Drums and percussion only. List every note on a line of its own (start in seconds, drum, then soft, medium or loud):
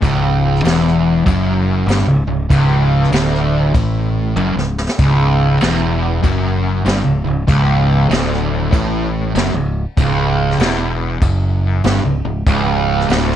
0.02 kick loud
0.02 crash medium
0.56 snare soft
0.65 snare loud
0.65 crash medium
0.87 snare soft
1.26 kick loud
1.26 crash medium
1.88 snare loud
1.88 crash medium
2.50 kick loud
2.50 crash medium
3.04 snare soft
3.12 snare loud
3.12 crash medium
3.34 snare soft
3.75 kick loud
3.75 crash medium
4.36 high tom medium
4.59 snare medium
4.78 snare medium
4.89 snare loud
4.98 kick loud
4.98 crash medium
5.61 snare loud
5.61 crash medium
6.24 kick loud
6.24 crash medium
6.86 snare loud
6.86 crash medium
7.48 kick loud
7.48 crash medium
8.11 snare loud
8.11 crash medium
8.33 snare soft
8.73 kick loud
8.73 crash medium
9.35 snare loud
9.35 crash medium
9.97 kick loud
9.97 crash medium
10.51 snare soft
10.59 snare loud
10.59 crash medium
11.22 kick loud
11.22 crash medium
11.84 snare loud
11.84 crash medium
12.47 kick loud
12.47 crash medium
13.00 snare soft
13.10 snare loud
13.10 crash medium
13.31 snare soft